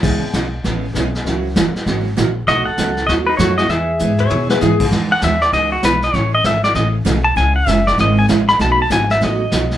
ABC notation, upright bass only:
X:1
M:4/4
L:1/8
Q:"Swing" 1/4=196
K:E
V:1 name="Upright bass" clef=bass
C,, z B,,,2 A,,,2 B,,,2 | C,,2 F,,, z G,,,2 ^A,,,2 | B,,, z C,,2 D,,2 F,,2 | E,,2 G,,2 B,,2 G,,2 |
E,,2 D,,2 C,,2 B,,,2 | A,,,2 G,,,2 A,,,2 B,,,2 | C,,2 F,,,2 G,,,2 A,,,2 | B,,,2 G,,,2 A,,,2 B,,,2 |]